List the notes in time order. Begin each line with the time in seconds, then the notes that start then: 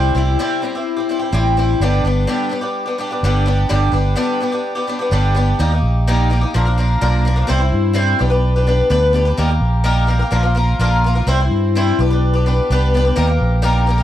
Already playing: C2 C3 G3 C4 E4 G4
0.15 C2 G3 C4 E4 G4
0.39 C3 G3 C4 E4 G4
0.62 G3 C4 E4 G4
0.75 C4 E4 G4
0.97 C4 E4 G4
1.09 G3 C4 E4 G4
1.19 C4 E4 G4
1.32 A1 C3 G3 C4 E4 G4
1.57 G3 C4 E4 G4
1.80 G1 G2 D3 G3 B3 D4 G4
2.04 G1 G3 B3 D4 G4
2.27 G2 D3 G3 B3 D4 G4
2.49 G3 B3 D4 G4
2.61 G3 B3 D4 G4
2.86 G3 B3 D4 G4
2.98 G3 B3 D4 G4
3.11 G3 B3 D4 G4
3.23 G1 G2 D3 G3 B3 D4 G4
3.46 G3 B3 D4 G4
3.69 G1 G2 D3 G3 B3 D4 G4
3.92 G1 G3 B3 D4 G4
4.16 G2 D3 G3 B3 D4 G4
4.40 G3 B3 D4 G4
4.52 G3 B3 D4 G4
4.75 G3 B3 D4 G4
4.87 G3 B3 D4 G4
4.99 G3 B3 D4 G4
5.11 G1 G2 D3 G3 B3 D4 G4
5.34 G3 B3 D4 G4
5.59 D#2 D#3 G3 A#3 D#4 G4
5.72 A#3 D#4 G4
5.83 A#1
6.07 D#3 G3 A#3 D#4 G4
6.30 G3 A#3 D#4 G4
6.41 A#3 D#4 G4
6.54 A#1 A#2 D3 F3 A#3 D4 A#4
6.65 F3 A#3 D4 A#4
6.78 F3 A#3 D4 A#4
7.01 B1 A#2 D3 F3 A#3 D4 A#4
7.25 F3 A#3 D4 A#4
7.36 F3 A#3 D4 A#4
7.47 C2 C3 G3 C4 E4 C5
7.60 C4 E4 C5
7.73 G2
7.93 C3 G3 C4 E4 C5
8.19 B1 B3 D4 G4 B4
8.30 D4 G4 B4
8.56 D4 G4 B4
8.67 B3 D4 G4 B4
8.90 D2 B3 D4 G4 B4
9.13 B3 D4 G4 B4
9.25 D4 G4 B4
9.37 D#2 D#3 G3 A#3 G4 A#4
9.49 A#3 G4 A#4
9.61 A#1
9.84 D#3 G3 A#3 G4 A#4
10.07 G3 A#3 G4 A#4
10.19 A#3 G4 A#4
10.31 A#1 A#2 D3 F3 A#3 F4 A#4
10.43 F3 A#3 F4 A#4
10.55 F3 A#3 F4 A#4
10.79 A#1 A#2 D3 F3 A#3 F4 A#4
11.04 F3 A#3 F4 A#4
11.15 F3 A#3 F4 A#4
11.27 C2 C3 G3 C4 E4 C5
11.40 C4 E4 C5
11.51 G2
11.75 C3 G3 C4 E4 C5
11.99 B1 B3 D4 G4 B4
12.10 D4 G4 B4
12.34 D4 G4 B4
12.46 B3 D4 G4 B4
12.70 C2 B3 D4 G4 B4
12.94 B3 D4 G4 B4
13.05 D4 G4 B4
13.16 D#2 D#3 G3 A#3 G4 A#4
13.27 A#3 G4 A#4
13.41 A#1
13.62 D#3 G3 A#3 G4 A#4
13.87 G3 A#3 G4 A#4
13.98 G4 A#4